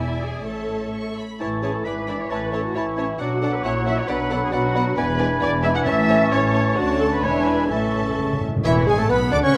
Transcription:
Already playing: double bass section E1, cello section E2, viola section E4, violin section D5 E5 G#5
0.21 viola section G#4
0.43 double bass section A1, cello section A2, viola section A4, violin section C#5 E5 A5
0.92 violin section C#6
1.17 violin section B5
1.39 double bass section A1, cello section A2, bassoon E3, viola section E4, violin section E4 C#5 A5, clarinet E4, oboe A5, flute section C#6
1.62 french horn section E3 C#4, violin section E4 C#5 A5, viola section G#4
1.75 viola section A4
1.85 double bass section G#1, cello section G#2, bassoon E3, clarinet E4, violin section E4 D5 B5, viola section B4, oboe B5, flute section D6
2.07 french horn section E3 D4, violin section E4 D5 B5, viola section D5
2.20 viola section C#5
2.29 double bass section A1, cello section A2, bassoon E3, violin section E4 C#5 A5, clarinet E4, viola section B4, oboe A5, flute section C#6
2.53 french horn section E3 C#4, violin section E4 C#5 A5, viola section A4
2.65 viola section F#4
2.74 double bass section A1, cello section A2, bassoon E3, viola section E4, violin section E4 C#5 A5, clarinet E4, oboe A5, flute section C#6
2.97 french horn section E3 C#4, violin section E4 C#5 A5, oboe G#5
3.19 double bass section B1, cello section B2, bassoon F#3, violin section D4 D5 F#5, clarinet D4, viola section F#4, oboe F#5, flute section D6
3.42 french horn section F#3 D4, violin section D4 D5 F#5, viola section A4
3.54 viola section B4
3.63 double bass section A#1, cello section A#2, bassoon F#3, violin section C#4 E5 F#5, clarinet E4, viola section C#5, oboe F#5, flute section C#6
3.87 french horn section F#3 E4, violin section C#4 E5 F#5, viola section E5
3.98 viola section C#5
4.08 double bass section B1, cello section B2, bassoon F#3, violin section B3 D5 F#5, clarinet D4, viola section B4, oboe F#5, flute section B5
4.30 french horn section F#3 D4, violin section B3 D5 F#5, viola section A4
4.43 viola section G#4
4.52 double bass section B1, cello section B2, bassoon F#3, violin section B3 D5 F#5, clarinet D4, viola section F#4, oboe F#5, flute section B5
4.74 french horn section F#3 D4, violin section B3 D5 F#5
4.96 double bass section E1, cello section E2, bassoon E3, violin section B3 D5 G#5, clarinet D4, viola section B4, oboe G#5, flute section B5
5.19 french horn section G#3 D4, violin section B3 D5 G#5
5.41 double bass section E1, cello section E2, violin section B3 D5 G#5, viola section D5
5.63 french horn section G#3 D4, violin section B3 D5 G#5, viola section E5
5.75 viola section F#5
5.85 double bass section A1, timpani A2, cello section A2, clarinet C#4, violin section C#4 C#5 A5, viola section E5, oboe A5, flute section C#6
6.08 french horn section A3 C#4, violin section C#4 C#5 A5
6.31 double bass section A1, cello section A2, violin section C#4 C#5 A5, viola section C#5
6.54 french horn section A3 C#4, violin section C#4 C#5 A5
6.77 cello section D2, double bass section D2, bassoon D3, french horn section A3 C#4, clarinet D4, violin section D4 C#5 A5, viola section F#4
7.00 viola section A4
7.13 viola section B4
7.23 double bass section E1, cello section E2, bassoon E3, french horn section G#3 D4, violin section D4 E5 G#5, viola section C#5, oboe G#5, flute section B5
7.47 viola section B4
7.70 double bass section A1, timpani A2, cello section A2, french horn section A3 C#4, violin section C#4 E5 A5, clarinet C#4, viola section A4, oboe A5, flute section C#6
7.79 timpani A2
7.87 timpani A2
8.02 timpani A2
8.09 timpani A2
8.17 timpani A2, cello section C#3
8.25 timpani A2
8.33 timpani A2
8.41 timpani A2, cello section A2
8.48 timpani A2
8.56 timpani A2
8.64 double bass section E1, cello section E2, bassoon E3, viola section E3, french horn section E3, flute section E4, clarinet E4, violin section E4 E5, oboe C#5
8.87 double bass section G#1, cello section G#2, bassoon G#3, french horn section G#3, viola section G#3, clarinet G#4, flute section G#4, violin section G#4 G#5
8.98 cello section A2, bassoon A3, french horn section A3, viola section A3, violin section A4 A5, clarinet A4, flute section A4
9.09 double bass section B1, cello section B2, french horn section B3, viola section B3, bassoon B3, violin section B4 B5, flute section B4, clarinet B4, oboe F#5
9.32 double bass section D2, cello section D3, bassoon D4, french horn section D4, viola section D4, violin section D5 D6, flute section D5, clarinet D5
9.43 cello section C#3, bassoon C#4, french horn section C#4, viola section C#4, flute section C#5, violin section C#5 C#6, clarinet C#5
9.54 violin section B4

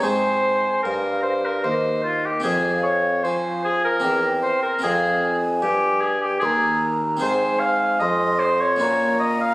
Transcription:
0.00 harpsichord G#3 C4 D#4 G#4, oboe C5
0.04 bassoon G#2, harpsichord G#2, flute G#5
0.83 bassoon G2, harpsichord G2, oboe A#4, flute F5
1.23 oboe C5
1.45 oboe A#4
1.64 harpsichord D#2, bassoon D#2, oboe C5, flute D#5
2.04 oboe F4
2.25 oboe G4
2.40 harpsichord C4 F4 G#4, oboe G#4
2.45 harpsichord F2, bassoon F2, flute F5
2.83 oboe C#5
3.23 bassoon F3, harpsichord F3, oboe C5, flute G#5
3.65 oboe G#4
3.85 oboe A#4
4.00 harpsichord C4 G4
4.04 bassoon E2, harpsichord E2, flute G5
4.43 oboe C5
4.63 oboe A#4
4.79 harpsichord C4 F4 G#4
4.83 harpsichord F2, bassoon F2, oboe G#4, flute F5 G5
5.23 flute G#5
5.62 harpsichord G2, bassoon G2, oboe G4
6.01 oboe G#4
6.21 oboe G4
6.40 harpsichord D#2, bassoon D#2, oboe G#4, flute C6
6.45 flute A#5
7.17 harpsichord C4 F4 G#4, flute A#5
7.21 harpsichord G#2, bassoon G#2, oboe C5, flute G#5
7.60 oboe F5
8.00 harpsichord F2, bassoon F2, oboe D#5, flute C6
8.40 oboe C5
8.60 oboe C#5
8.76 harpsichord A#3 C#4 F#4
8.81 harpsichord A#2, bassoon A#2, flute A#5
9.20 oboe D#5
9.41 oboe F5

